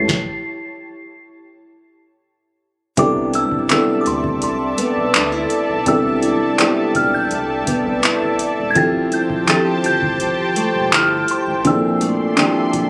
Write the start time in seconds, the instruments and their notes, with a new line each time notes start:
Already playing: nylon-string guitar G3 C#4 E4, felt piano A3 B4, synth bell C7
0.08 kick, snare
2.97 analog synth bass C2, felt piano C3 G3 B3 D4 E4 A4, nylon-string guitar C3, analog synth pad A4 D5 E5 A5, synth bell D6, kick, closed hi-hat
3.33 nylon-string guitar E4, synth bell E6, closed hi-hat
3.52 analog synth bass D2, kick
3.70 felt piano C3 G3 B3 D4 E4 A4, synth bell E6, clap, closed hi-hat
4.01 synth bell D6
4.06 analog synth bass D2, synth bell C6, closed hi-hat
4.24 kick
4.42 analog synth bass C2, synth bell C6, closed hi-hat
4.78 nylon-string guitar B3, closed hi-hat
4.97 analog synth bass B1
5.14 analog synth bass D2, nylon-string guitar D4, clap, closed hi-hat
5.32 nylon-string guitar E4
5.50 closed hi-hat
5.69 analog synth bass B1
5.86 analog synth bass C2, felt piano C3 G3 B3 D4 E4 A4, synth bell E6, kick, closed hi-hat
6.22 nylon-string guitar E4, closed hi-hat
6.41 analog synth bass B1
6.58 felt piano G3 B3 C4 D4 E4 G4, clap, closed hi-hat
6.95 analog synth bass B1, synth bell F6, kick, closed hi-hat
7.14 synth bell G6
7.31 analog synth bass C2, closed hi-hat
7.67 nylon-string guitar B3, kick, closed hi-hat
7.86 analog synth bass C2
8.03 analog synth bass A1, nylon-string guitar E4, clap, closed hi-hat
8.22 analog synth bass A1
8.39 closed hi-hat
8.58 analog synth bass E1
8.71 synth bell G#6
8.75 analog synth bass F1, felt piano F3 C4 E4 G4 A4, nylon-string guitar F3, analog synth pad G4 C5 G5 A5, synth bell A6, kick, closed hi-hat
9.12 nylon-string guitar E4, synth bell G6, closed hi-hat
9.30 analog synth bass G1, kick
9.48 felt piano F3 C4 E4 G4 A4, synth bell A6, clap, closed hi-hat
9.84 analog synth bass G1, synth bell G6, closed hi-hat
10.02 kick
10.20 analog synth bass F1, closed hi-hat
10.56 nylon-string guitar A3, closed hi-hat
10.75 analog synth bass E1
10.92 analog synth bass G1, nylon-string guitar E4, synth bell F6, clap, closed hi-hat
11.28 synth bell C6, closed hi-hat
11.47 analog synth bass A1
11.65 analog synth bass A#1, nylon-string guitar A#2, felt piano A#2 F3 C4 D4 E4 G#4, analog synth pad A4 D5 E5 C6, synth bell E6, kick, closed hi-hat
11.74 felt piano A4
12.01 nylon-string guitar A3, closed hi-hat
12.20 analog synth bass A#1
12.37 felt piano A#2 F3 C4 D4 E4 G4, clap, closed hi-hat
12.73 analog synth bass A#1, kick, closed hi-hat